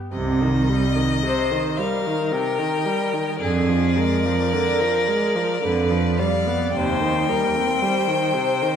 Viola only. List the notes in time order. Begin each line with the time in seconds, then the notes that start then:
0.13 C3
0.41 D#3
0.69 G3
0.96 D#3
1.24 C3
1.52 D#3
1.79 G3
2.06 D#3
2.32 C3
2.59 D#3
2.86 G3
3.14 D#3
3.41 D3
3.69 F3
3.97 G#3
4.26 F3
4.53 D3
4.81 F3
5.08 G#3
5.35 F3
5.63 D3
5.91 F3
6.20 G3
6.47 B3
6.74 C3
7.02 D#3
7.29 G3
7.56 C4
7.82 G3
8.08 D#3
8.34 C3
8.62 D#3